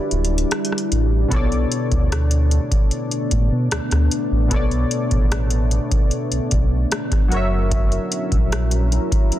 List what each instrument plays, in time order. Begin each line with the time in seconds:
Already playing: ambient pad G3 D4 E4, synth keys G3 E4 F#4 B4 D5
0.11 sub bass D1, closed hi-hat
0.25 closed hi-hat
0.38 closed hi-hat
0.51 cross-stick, closed hi-hat
0.65 closed hi-hat
0.72 cross-stick
0.78 closed hi-hat
0.92 sub bass A1, closed hi-hat
1.28 sub bass B1, synth keys B2 B3, ambient pad A3 B3, kick, closed hi-hat
1.32 synth keys A4 C#5 D5
1.52 closed hi-hat
1.72 closed hi-hat
1.92 sub bass D2, kick, closed hi-hat
2.12 cross-stick, closed hi-hat
2.31 closed hi-hat
2.51 closed hi-hat
2.72 kick, closed hi-hat
2.91 closed hi-hat
3.11 closed hi-hat
3.31 sub bass A2, kick, closed hi-hat
3.52 sub bass B2
3.71 sub bass D2, cross-stick, closed hi-hat
3.91 sub bass D2, cross-stick, closed hi-hat
4.11 closed hi-hat
4.32 sub bass A1
4.48 sub bass B1, synth keys B2 B3, kick, closed hi-hat
4.52 synth keys A4 C#5 D5
4.71 closed hi-hat
4.91 closed hi-hat
5.11 sub bass A1, kick, closed hi-hat
5.32 cross-stick, closed hi-hat
5.50 closed hi-hat
5.71 closed hi-hat
5.92 kick, closed hi-hat
6.11 closed hi-hat
6.32 sub bass B1, closed hi-hat
6.51 sub bass B1, kick, closed hi-hat
6.92 cross-stick, closed hi-hat
7.12 kick, cross-stick, closed hi-hat
7.28 sub bass F#1, synth keys F#3 F#4, ambient pad F#3 C#4 E4 A#4, closed hi-hat
7.32 synth keys A#4 C#5
7.36 synth keys E5
7.71 kick, closed hi-hat
7.92 closed hi-hat
8.12 closed hi-hat
8.32 sub bass A#1, kick, closed hi-hat
8.52 cross-stick, closed hi-hat
8.71 closed hi-hat
8.92 closed hi-hat
9.12 kick, closed hi-hat
9.32 closed hi-hat